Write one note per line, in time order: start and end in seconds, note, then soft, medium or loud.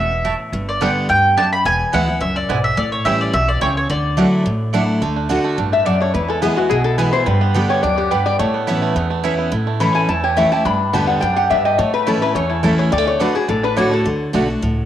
0.00 0.31 E1 medium
0.00 0.24 B2 medium
0.00 0.37 E5 medium
0.24 0.52 A2 medium
0.24 0.34 A3 loud
0.24 0.34 E4 medium
0.24 0.34 C#5 loud
0.24 0.34 A5 loud
0.52 0.87 G1 loud
0.52 1.07 G2 medium
0.69 0.82 D5 medium
0.81 1.08 D3 medium
0.81 0.88 G3 medium
0.81 1.08 G3 medium
0.81 0.90 B3 medium
0.81 1.08 B3 medium
0.81 0.88 B3 medium
0.81 0.88 D4 medium
0.81 0.91 G4 medium
0.81 1.09 G4 loud
0.81 0.91 D5 loud
0.81 1.09 F#5 loud
0.81 0.91 G5 medium
1.09 1.43 D2 medium
1.09 1.36 G2 medium
1.09 1.36 G5 loud
1.37 1.64 F#2 medium
1.37 1.44 G3 medium
1.37 1.46 B3 loud
1.37 1.44 B3 medium
1.37 1.44 D4 medium
1.37 1.47 G4 medium
1.37 1.47 D5 loud
1.37 1.47 G5 loud
1.37 1.51 A5 loud
1.53 1.65 B5 loud
1.65 1.82 E1 loud
1.65 2.19 E2 loud
1.65 1.94 G#5 loud
1.92 2.17 D2 medium
1.92 2.07 E3 loud
1.92 2.08 G#3 medium
1.92 2.00 G#3 medium
1.92 2.02 B3 medium
1.92 2.08 B3 loud
1.92 2.00 B3 medium
1.92 2.02 E4 medium
1.92 2.00 E4 medium
1.92 2.07 E4 loud
1.92 2.03 B4 loud
1.92 2.20 F#5 loud
1.92 2.03 G#5 loud
2.08 2.22 B3 medium
2.08 2.21 E4 medium
2.21 2.45 C#2 medium
2.21 2.48 F#2 medium
2.21 2.35 E5 loud
2.36 2.65 D5 medium
2.49 2.73 B1 medium
2.49 2.76 G#2 medium
2.49 2.56 G#3 medium
2.49 2.59 B3 loud
2.49 2.56 B3 medium
2.49 2.59 E4 loud
2.49 2.56 E4 medium
2.49 2.59 B4 loud
2.49 2.59 G#5 loud
2.64 2.76 E5 loud
2.77 2.94 A1 loud
2.77 3.31 A2 medium
2.77 2.92 D5 medium
2.92 3.05 C#5 medium
3.05 3.29 A1 medium
3.05 3.32 E3 medium
3.05 3.12 G3 medium
3.05 3.32 G3 loud
3.05 3.15 A3 medium
3.05 3.33 C#4 loud
3.05 3.12 C#4 medium
3.05 3.15 E4 loud
3.05 3.12 E4 medium
3.05 3.33 E4 loud
3.05 3.15 C#5 loud
3.05 3.19 E5 loud
3.05 3.15 G5 loud
3.21 3.33 D5 medium
3.33 3.57 B1 medium
3.33 3.60 B2 loud
3.33 3.47 E5 loud
3.48 3.61 D5 medium
3.61 3.85 C#2 medium
3.61 3.88 C#3 medium
3.61 3.68 G3 medium
3.61 3.71 A3 loud
3.61 3.68 C#4 medium
3.61 3.71 E4 medium
3.61 3.69 E4 medium
3.61 3.75 C#5 medium
3.61 3.71 C#5 medium
3.61 3.71 G5 loud
3.77 3.89 C#5 medium
3.90 4.24 D2 loud
3.90 4.43 D3 loud
3.90 4.70 D5 medium
4.17 4.44 F#3 medium
4.17 4.27 A3 medium
4.17 4.44 A3 loud
4.17 4.24 A3 medium
4.17 4.45 D4 loud
4.17 4.25 D4 medium
4.17 4.27 E4 medium
4.17 4.45 E4 loud
4.17 4.27 D5 loud
4.17 4.27 F#5 loud
4.46 4.80 A1 medium
4.46 4.99 A2 medium
4.73 5.00 F#3 medium
4.73 4.83 A3 loud
4.73 4.80 A3 medium
4.73 5.01 A3 medium
4.73 4.81 D4 medium
4.73 5.01 D4 loud
4.73 4.83 E4 loud
4.73 5.01 E4 loud
4.73 4.83 D5 loud
4.73 4.83 F#5 loud
5.01 5.36 D2 loud
5.01 5.28 D3 medium
5.01 5.41 A3 medium
5.16 5.28 D4 medium
5.29 5.56 D3 medium
5.29 5.39 A3 medium
5.29 5.57 A3 medium
5.29 5.57 D4 medium
5.29 5.57 D4 loud
5.29 5.39 F#4 medium
5.29 5.57 F#4 loud
5.29 5.39 D5 medium
5.29 5.39 A5 loud
5.44 5.71 A3 medium
5.58 5.92 A1 medium
5.58 5.85 G2 medium
5.58 5.84 D4 medium
5.72 6.11 A3 medium
5.72 5.86 E5 loud
5.86 6.13 F#2 medium
5.86 5.95 A3 medium
5.86 5.99 D4 medium
5.86 5.95 F#4 loud
5.86 5.95 D5 medium
5.86 6.01 D5 medium
5.86 5.96 A5 loud
6.00 6.14 D4 medium
6.00 6.14 C#5 loud
6.14 6.48 E2 loud
6.14 6.68 E2 medium
6.14 6.54 E4 medium
6.14 6.29 B4 medium
6.28 6.55 G#3 medium
6.28 6.42 A4 medium
6.42 6.56 E3 medium
6.42 6.57 G#3 loud
6.42 6.51 B3 medium
6.42 7.41 B3 medium
6.42 6.57 B3 loud
6.42 6.52 E4 medium
6.42 6.55 E4 loud
6.42 6.57 G#4 medium
6.42 6.52 B4 medium
6.42 6.52 G#5 loud
6.56 6.95 G#3 medium
6.56 6.70 B3 soft
6.56 6.70 E4 medium
6.56 6.70 F#4 medium
6.69 7.04 B1 medium
6.69 7.24 B2 medium
6.69 6.83 E4 medium
6.69 6.84 G#4 medium
6.84 6.97 E4 medium
6.84 6.98 A4 loud
6.98 7.13 E3 medium
6.98 7.13 G#3 loud
6.98 7.08 B3 medium
6.98 7.13 B3 medium
6.98 7.12 E4 medium
6.98 7.08 E4 medium
6.98 7.12 E4 loud
6.98 7.12 B4 medium
6.98 7.08 B4 medium
6.98 7.08 G#5 loud
7.13 7.27 B3 medium
7.13 7.26 E4 medium
7.13 7.26 C5 loud
7.26 7.80 G2 loud
7.26 7.61 G2 loud
7.26 7.66 G3 medium
7.26 7.52 B4 medium
7.41 7.80 B3 medium
7.54 7.81 D3 loud
7.54 7.82 G3 medium
7.54 7.64 B3 loud
7.54 7.82 B3 loud
7.54 7.81 D4 medium
7.54 7.64 G4 medium
7.54 7.82 G4 loud
7.54 7.64 D5 medium
7.54 7.64 G5 loud
7.69 8.08 G4 medium
7.69 7.82 C#5 loud
7.83 8.17 D2 medium
7.83 8.10 F#2 medium
7.83 8.23 D4 medium
7.83 7.97 D5 loud
7.97 8.36 B3 medium
7.97 8.11 G4 medium
8.11 8.38 G2 medium
8.11 8.20 B3 medium
8.11 8.20 G4 loud
8.11 8.39 G4 medium
8.11 8.26 B4 medium
8.11 8.21 D5 loud
8.11 8.21 G5 loud
8.25 8.39 G3 medium
8.25 8.39 D5 loud
8.39 8.74 A2 loud
8.39 8.93 A2 loud
8.39 8.79 A3 medium
8.39 8.92 C#5 medium
8.54 8.93 B3 medium
8.67 8.94 E3 medium
8.67 8.95 B3 loud
8.67 8.77 C#4 medium
8.67 8.95 C#4 medium
8.67 9.07 E4 medium
8.67 8.95 E4 loud
8.67 8.77 A4 medium
8.67 8.77 E5 medium
8.67 8.77 B5 loud
8.82 9.09 A3 medium
8.95 9.30 E2 medium
8.95 9.50 E2 medium
8.95 9.36 B3 medium
9.10 9.49 A3 medium
9.24 9.51 E3 medium
9.24 9.51 B3 medium
9.24 9.33 C#4 medium
9.24 9.51 C#4 medium
9.24 9.51 E4 medium
9.24 9.34 A4 medium
9.24 9.34 E5 loud
9.24 9.34 B5 loud
9.39 9.52 B3 medium
9.52 10.06 A2 medium
9.52 9.87 A2 loud
9.52 9.92 E4 medium
9.67 9.94 A3 medium
9.80 10.07 E3 medium
9.80 9.90 A3 medium
9.80 10.08 A3 loud
9.80 10.21 C#4 medium
9.80 10.08 C#4 loud
9.80 9.90 E4 medium
9.80 10.08 E4 loud
9.80 9.90 C#5 medium
9.80 9.90 A5 medium
9.80 9.95 B5 medium
9.95 10.34 A3 medium
9.95 10.08 G#5 loud
10.09 10.43 E2 medium
10.09 10.63 E2 medium
10.09 10.36 E4 medium
10.09 10.23 A5 loud
10.24 10.51 G4 medium
10.24 10.37 C#5 medium
10.36 10.51 E3 medium
10.36 10.46 A3 medium
10.36 10.51 A3 medium
10.36 10.52 C#4 medium
10.36 10.65 E4 medium
10.36 10.47 E4 loud
10.36 10.51 E4 loud
10.36 10.47 C#5 loud
10.36 10.52 E5 medium
10.36 10.47 A5 loud
10.52 10.66 C#4 soft
10.52 10.65 E4 medium
10.52 10.65 G4 medium
10.52 10.65 A5 loud
10.65 10.83 G2 loud
10.65 11.19 G2 medium
10.65 11.06 D4 medium
10.65 10.93 B5 loud
10.93 11.18 E2 medium
10.93 11.21 D3 loud
10.93 11.21 G3 medium
10.93 11.03 B3 loud
10.93 11.34 B3 medium
10.93 11.21 B3 loud
10.93 11.03 G4 loud
10.93 11.21 G4 loud
10.93 11.03 D5 loud
10.93 11.03 G5 loud
10.93 11.08 A5 loud
11.07 11.48 G3 medium
11.07 11.21 F#5 loud
11.21 11.46 F#2 medium
11.21 11.49 F#2 medium
11.21 11.49 D4 medium
11.21 11.36 G5 loud
11.37 11.64 G4 medium
11.37 11.50 F#5 loud
11.50 11.74 G2 medium
11.50 11.78 G2 medium
11.50 11.60 B3 medium
11.50 11.79 D4 medium
11.50 11.60 G4 loud
11.50 11.60 D5 loud
11.50 11.65 E5 loud
11.50 11.60 G5 medium
11.65 11.79 G4 medium
11.65 11.78 D#5 loud
11.78 12.13 A2 loud
11.78 12.33 A2 loud
11.78 12.21 A3 medium
11.78 11.93 C#5 medium
11.94 12.07 B4 loud
12.06 12.21 E3 loud
12.06 12.16 A3 medium
12.06 12.22 A3 medium
12.06 12.22 C#4 loud
12.06 12.47 E4 medium
12.06 12.16 E4 medium
12.06 12.21 E4 loud
12.06 12.22 A4 medium
12.06 12.17 C#5 loud
12.06 12.17 A5 loud
12.22 12.49 A3 medium
12.22 12.36 C#4 soft
12.22 12.35 E4 medium
12.22 12.35 B4 medium
12.35 12.70 E2 medium
12.35 12.90 E2 medium
12.35 12.75 C#4 medium
12.35 12.50 C#5 loud
12.50 12.91 A3 medium
12.50 12.63 E4 medium
12.63 12.90 E3 medium
12.63 12.73 A3 loud
12.63 12.91 A3 medium
12.63 12.91 C#4 loud
12.63 12.92 E4 medium
12.63 12.73 E4 loud
12.63 12.91 E4 loud
12.63 12.78 A4 medium
12.63 12.73 C#5 loud
12.63 12.73 A5 loud
12.78 12.92 C#4 medium
12.78 12.92 C#5 medium
12.92 13.26 D2 loud
12.92 13.19 D3 medium
12.92 12.98 G3 medium
12.92 13.07 D5 loud
12.98 13.20 A3 medium
13.07 13.20 C#5 loud
13.19 13.35 D3 medium
13.19 13.29 A3 loud
13.19 13.35 A3 loud
13.19 13.34 D4 medium
13.19 13.35 D4 loud
13.19 13.30 F#4 medium
13.19 13.34 F#4 loud
13.19 13.35 B4 medium
13.19 13.30 D5 loud
13.19 13.30 A5 medium
13.35 13.47 D4 medium
13.35 13.49 D4 medium
13.35 13.48 F#4 medium
13.35 13.48 G#4 loud
13.48 13.83 A1 medium
13.48 14.03 A2 medium
13.48 13.62 D4 medium
13.48 13.64 A4 medium
13.63 13.76 D4 medium
13.63 13.77 B4 loud
13.76 14.04 D3 medium
13.76 13.86 A3 loud
13.76 14.04 A3 medium
13.76 14.05 D4 medium
13.76 13.86 F#4 loud
13.76 14.05 F#4 loud
13.76 13.92 C#5 loud
13.76 13.87 D5 loud
13.76 13.87 A5 loud
13.91 14.05 A3 medium
13.91 14.59 A4 loud
14.05 14.23 D2 medium
14.05 14.32 D3 medium
14.33 14.58 B1 medium
14.33 14.48 D3 medium
14.33 14.43 A3 medium
14.33 14.48 A3 loud
14.33 14.41 A3 medium
14.33 14.48 D4 medium
14.33 14.41 D4 medium
14.33 14.43 F#4 medium
14.33 14.47 F#4 medium
14.33 14.44 D5 medium
14.33 14.44 A5 medium
14.48 14.62 D4 soft
14.48 14.61 F#4 medium
14.62 14.85 C#2 medium
14.62 14.85 A2 medium